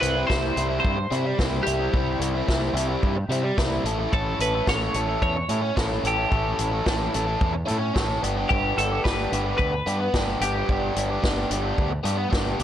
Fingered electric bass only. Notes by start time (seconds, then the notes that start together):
0.02 C2
0.30 C2
0.56 C2
0.84 G2
1.11 C3
1.39 C2
1.67 C2
1.94 C2
2.20 C2
2.49 C2
2.73 C2
3.03 G2
3.29 C3
3.58 C2
3.84 A1
4.13 A1
4.39 A1
4.67 A1
4.94 A1
5.22 E2
5.49 A2
5.77 A1
6.03 A1
6.32 A1
6.59 A1
6.87 A1
7.15 A1
7.41 E2
7.70 A2
7.96 A1
8.23 G1
8.51 G1
8.78 G1
9.05 G1
9.32 G1
9.59 D2
9.87 G2
10.14 G1
10.41 G1
10.68 G1
10.96 G1
11.24 G1
11.50 G1
11.78 D2
12.04 G2
12.33 G1
12.60 B1